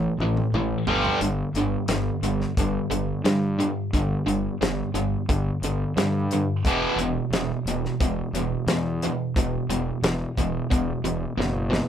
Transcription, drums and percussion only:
0, 0, Header, 1, 2, 480
1, 0, Start_track
1, 0, Tempo, 678733
1, 857, Time_signature, 4, 2, 24, 8
1, 8405, End_track
2, 0, Start_track
2, 0, Title_t, "Drums"
2, 145, Note_on_c, 9, 48, 65
2, 215, Note_off_c, 9, 48, 0
2, 263, Note_on_c, 9, 48, 64
2, 334, Note_off_c, 9, 48, 0
2, 383, Note_on_c, 9, 47, 83
2, 453, Note_off_c, 9, 47, 0
2, 616, Note_on_c, 9, 43, 91
2, 687, Note_off_c, 9, 43, 0
2, 742, Note_on_c, 9, 43, 76
2, 813, Note_off_c, 9, 43, 0
2, 856, Note_on_c, 9, 42, 98
2, 927, Note_off_c, 9, 42, 0
2, 1096, Note_on_c, 9, 42, 72
2, 1167, Note_off_c, 9, 42, 0
2, 1330, Note_on_c, 9, 42, 97
2, 1335, Note_on_c, 9, 38, 102
2, 1401, Note_off_c, 9, 42, 0
2, 1406, Note_off_c, 9, 38, 0
2, 1577, Note_on_c, 9, 42, 71
2, 1648, Note_off_c, 9, 42, 0
2, 1702, Note_on_c, 9, 38, 29
2, 1773, Note_off_c, 9, 38, 0
2, 1819, Note_on_c, 9, 36, 108
2, 1823, Note_on_c, 9, 42, 94
2, 1890, Note_off_c, 9, 36, 0
2, 1893, Note_off_c, 9, 42, 0
2, 2060, Note_on_c, 9, 42, 69
2, 2131, Note_off_c, 9, 42, 0
2, 2301, Note_on_c, 9, 42, 94
2, 2306, Note_on_c, 9, 38, 104
2, 2371, Note_off_c, 9, 42, 0
2, 2376, Note_off_c, 9, 38, 0
2, 2547, Note_on_c, 9, 42, 63
2, 2618, Note_off_c, 9, 42, 0
2, 2783, Note_on_c, 9, 36, 105
2, 2786, Note_on_c, 9, 42, 88
2, 2853, Note_off_c, 9, 36, 0
2, 2856, Note_off_c, 9, 42, 0
2, 3028, Note_on_c, 9, 42, 60
2, 3099, Note_off_c, 9, 42, 0
2, 3268, Note_on_c, 9, 42, 84
2, 3273, Note_on_c, 9, 38, 108
2, 3339, Note_off_c, 9, 42, 0
2, 3344, Note_off_c, 9, 38, 0
2, 3501, Note_on_c, 9, 42, 65
2, 3571, Note_off_c, 9, 42, 0
2, 3742, Note_on_c, 9, 36, 117
2, 3745, Note_on_c, 9, 42, 92
2, 3813, Note_off_c, 9, 36, 0
2, 3816, Note_off_c, 9, 42, 0
2, 3982, Note_on_c, 9, 42, 68
2, 4053, Note_off_c, 9, 42, 0
2, 4226, Note_on_c, 9, 42, 91
2, 4231, Note_on_c, 9, 38, 108
2, 4296, Note_off_c, 9, 42, 0
2, 4301, Note_off_c, 9, 38, 0
2, 4462, Note_on_c, 9, 42, 66
2, 4533, Note_off_c, 9, 42, 0
2, 4701, Note_on_c, 9, 36, 110
2, 4706, Note_on_c, 9, 42, 95
2, 4772, Note_off_c, 9, 36, 0
2, 4776, Note_off_c, 9, 42, 0
2, 4941, Note_on_c, 9, 42, 73
2, 5012, Note_off_c, 9, 42, 0
2, 5183, Note_on_c, 9, 42, 87
2, 5187, Note_on_c, 9, 38, 103
2, 5253, Note_off_c, 9, 42, 0
2, 5258, Note_off_c, 9, 38, 0
2, 5425, Note_on_c, 9, 42, 68
2, 5496, Note_off_c, 9, 42, 0
2, 5550, Note_on_c, 9, 38, 31
2, 5621, Note_off_c, 9, 38, 0
2, 5661, Note_on_c, 9, 36, 118
2, 5665, Note_on_c, 9, 42, 94
2, 5732, Note_off_c, 9, 36, 0
2, 5735, Note_off_c, 9, 42, 0
2, 5904, Note_on_c, 9, 42, 68
2, 5974, Note_off_c, 9, 42, 0
2, 6137, Note_on_c, 9, 42, 88
2, 6141, Note_on_c, 9, 38, 105
2, 6207, Note_off_c, 9, 42, 0
2, 6212, Note_off_c, 9, 38, 0
2, 6382, Note_on_c, 9, 42, 70
2, 6452, Note_off_c, 9, 42, 0
2, 6620, Note_on_c, 9, 36, 112
2, 6625, Note_on_c, 9, 42, 100
2, 6691, Note_off_c, 9, 36, 0
2, 6696, Note_off_c, 9, 42, 0
2, 6862, Note_on_c, 9, 42, 67
2, 6933, Note_off_c, 9, 42, 0
2, 7097, Note_on_c, 9, 42, 96
2, 7102, Note_on_c, 9, 38, 106
2, 7168, Note_off_c, 9, 42, 0
2, 7173, Note_off_c, 9, 38, 0
2, 7337, Note_on_c, 9, 36, 82
2, 7343, Note_on_c, 9, 42, 69
2, 7408, Note_off_c, 9, 36, 0
2, 7414, Note_off_c, 9, 42, 0
2, 7577, Note_on_c, 9, 36, 112
2, 7578, Note_on_c, 9, 42, 89
2, 7648, Note_off_c, 9, 36, 0
2, 7649, Note_off_c, 9, 42, 0
2, 7814, Note_on_c, 9, 42, 64
2, 7885, Note_off_c, 9, 42, 0
2, 8064, Note_on_c, 9, 38, 67
2, 8135, Note_off_c, 9, 38, 0
2, 8296, Note_on_c, 9, 38, 89
2, 8367, Note_off_c, 9, 38, 0
2, 8405, End_track
0, 0, End_of_file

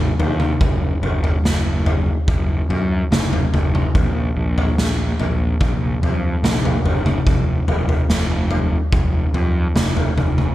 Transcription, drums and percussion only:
0, 0, Header, 1, 2, 480
1, 0, Start_track
1, 0, Tempo, 832178
1, 350, Time_signature, 4, 2, 24, 8
1, 6085, End_track
2, 0, Start_track
2, 0, Title_t, "Drums"
2, 113, Note_on_c, 9, 43, 75
2, 171, Note_off_c, 9, 43, 0
2, 229, Note_on_c, 9, 47, 61
2, 287, Note_off_c, 9, 47, 0
2, 351, Note_on_c, 9, 36, 86
2, 351, Note_on_c, 9, 43, 70
2, 409, Note_off_c, 9, 36, 0
2, 409, Note_off_c, 9, 43, 0
2, 594, Note_on_c, 9, 43, 67
2, 652, Note_off_c, 9, 43, 0
2, 714, Note_on_c, 9, 43, 66
2, 772, Note_off_c, 9, 43, 0
2, 838, Note_on_c, 9, 38, 67
2, 896, Note_off_c, 9, 38, 0
2, 1075, Note_on_c, 9, 43, 70
2, 1132, Note_off_c, 9, 43, 0
2, 1315, Note_on_c, 9, 36, 93
2, 1315, Note_on_c, 9, 43, 80
2, 1372, Note_off_c, 9, 36, 0
2, 1373, Note_off_c, 9, 43, 0
2, 1559, Note_on_c, 9, 43, 67
2, 1617, Note_off_c, 9, 43, 0
2, 1799, Note_on_c, 9, 47, 70
2, 1802, Note_on_c, 9, 38, 69
2, 1857, Note_off_c, 9, 47, 0
2, 1860, Note_off_c, 9, 38, 0
2, 1920, Note_on_c, 9, 43, 61
2, 1978, Note_off_c, 9, 43, 0
2, 2040, Note_on_c, 9, 43, 69
2, 2040, Note_on_c, 9, 47, 67
2, 2098, Note_off_c, 9, 43, 0
2, 2098, Note_off_c, 9, 47, 0
2, 2162, Note_on_c, 9, 47, 66
2, 2220, Note_off_c, 9, 47, 0
2, 2278, Note_on_c, 9, 36, 88
2, 2279, Note_on_c, 9, 43, 65
2, 2336, Note_off_c, 9, 36, 0
2, 2336, Note_off_c, 9, 43, 0
2, 2640, Note_on_c, 9, 43, 67
2, 2698, Note_off_c, 9, 43, 0
2, 2759, Note_on_c, 9, 38, 66
2, 2817, Note_off_c, 9, 38, 0
2, 2997, Note_on_c, 9, 43, 69
2, 3054, Note_off_c, 9, 43, 0
2, 3234, Note_on_c, 9, 43, 77
2, 3234, Note_on_c, 9, 47, 73
2, 3235, Note_on_c, 9, 36, 103
2, 3292, Note_off_c, 9, 43, 0
2, 3292, Note_off_c, 9, 47, 0
2, 3293, Note_off_c, 9, 36, 0
2, 3479, Note_on_c, 9, 43, 68
2, 3537, Note_off_c, 9, 43, 0
2, 3715, Note_on_c, 9, 47, 68
2, 3718, Note_on_c, 9, 38, 65
2, 3772, Note_off_c, 9, 47, 0
2, 3775, Note_off_c, 9, 38, 0
2, 3837, Note_on_c, 9, 43, 67
2, 3895, Note_off_c, 9, 43, 0
2, 3955, Note_on_c, 9, 43, 73
2, 4012, Note_off_c, 9, 43, 0
2, 4072, Note_on_c, 9, 47, 69
2, 4129, Note_off_c, 9, 47, 0
2, 4191, Note_on_c, 9, 36, 86
2, 4192, Note_on_c, 9, 43, 66
2, 4249, Note_off_c, 9, 36, 0
2, 4250, Note_off_c, 9, 43, 0
2, 4430, Note_on_c, 9, 43, 65
2, 4488, Note_off_c, 9, 43, 0
2, 4550, Note_on_c, 9, 43, 68
2, 4608, Note_off_c, 9, 43, 0
2, 4670, Note_on_c, 9, 38, 65
2, 4728, Note_off_c, 9, 38, 0
2, 4906, Note_on_c, 9, 43, 71
2, 4964, Note_off_c, 9, 43, 0
2, 5148, Note_on_c, 9, 36, 102
2, 5148, Note_on_c, 9, 43, 81
2, 5206, Note_off_c, 9, 36, 0
2, 5206, Note_off_c, 9, 43, 0
2, 5389, Note_on_c, 9, 43, 68
2, 5447, Note_off_c, 9, 43, 0
2, 5627, Note_on_c, 9, 47, 68
2, 5630, Note_on_c, 9, 38, 67
2, 5685, Note_off_c, 9, 47, 0
2, 5688, Note_off_c, 9, 38, 0
2, 5749, Note_on_c, 9, 43, 68
2, 5806, Note_off_c, 9, 43, 0
2, 5869, Note_on_c, 9, 43, 69
2, 5869, Note_on_c, 9, 47, 67
2, 5927, Note_off_c, 9, 43, 0
2, 5927, Note_off_c, 9, 47, 0
2, 5987, Note_on_c, 9, 47, 62
2, 6045, Note_off_c, 9, 47, 0
2, 6085, End_track
0, 0, End_of_file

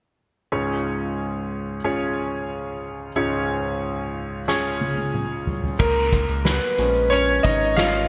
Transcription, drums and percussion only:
0, 0, Header, 1, 2, 480
1, 0, Start_track
1, 0, Tempo, 659341
1, 378, Time_signature, 4, 2, 24, 8
1, 5883, End_track
2, 0, Start_track
2, 0, Title_t, "Drums"
2, 3261, Note_on_c, 9, 38, 44
2, 3334, Note_off_c, 9, 38, 0
2, 3501, Note_on_c, 9, 48, 58
2, 3573, Note_off_c, 9, 48, 0
2, 3621, Note_on_c, 9, 48, 45
2, 3694, Note_off_c, 9, 48, 0
2, 3741, Note_on_c, 9, 47, 63
2, 3814, Note_off_c, 9, 47, 0
2, 3981, Note_on_c, 9, 43, 79
2, 4054, Note_off_c, 9, 43, 0
2, 4101, Note_on_c, 9, 43, 70
2, 4173, Note_off_c, 9, 43, 0
2, 4220, Note_on_c, 9, 49, 90
2, 4221, Note_on_c, 9, 36, 107
2, 4293, Note_off_c, 9, 49, 0
2, 4294, Note_off_c, 9, 36, 0
2, 4340, Note_on_c, 9, 42, 32
2, 4412, Note_off_c, 9, 42, 0
2, 4460, Note_on_c, 9, 36, 84
2, 4461, Note_on_c, 9, 42, 74
2, 4532, Note_off_c, 9, 36, 0
2, 4534, Note_off_c, 9, 42, 0
2, 4575, Note_on_c, 9, 42, 39
2, 4648, Note_off_c, 9, 42, 0
2, 4697, Note_on_c, 9, 38, 94
2, 4702, Note_on_c, 9, 42, 76
2, 4770, Note_off_c, 9, 38, 0
2, 4775, Note_off_c, 9, 42, 0
2, 4823, Note_on_c, 9, 42, 33
2, 4896, Note_off_c, 9, 42, 0
2, 4937, Note_on_c, 9, 42, 68
2, 5010, Note_off_c, 9, 42, 0
2, 5060, Note_on_c, 9, 42, 39
2, 5133, Note_off_c, 9, 42, 0
2, 5181, Note_on_c, 9, 42, 83
2, 5254, Note_off_c, 9, 42, 0
2, 5299, Note_on_c, 9, 42, 32
2, 5372, Note_off_c, 9, 42, 0
2, 5417, Note_on_c, 9, 42, 84
2, 5421, Note_on_c, 9, 36, 93
2, 5490, Note_off_c, 9, 42, 0
2, 5494, Note_off_c, 9, 36, 0
2, 5541, Note_on_c, 9, 42, 45
2, 5614, Note_off_c, 9, 42, 0
2, 5660, Note_on_c, 9, 38, 93
2, 5663, Note_on_c, 9, 42, 83
2, 5733, Note_off_c, 9, 38, 0
2, 5736, Note_off_c, 9, 42, 0
2, 5781, Note_on_c, 9, 42, 26
2, 5854, Note_off_c, 9, 42, 0
2, 5883, End_track
0, 0, End_of_file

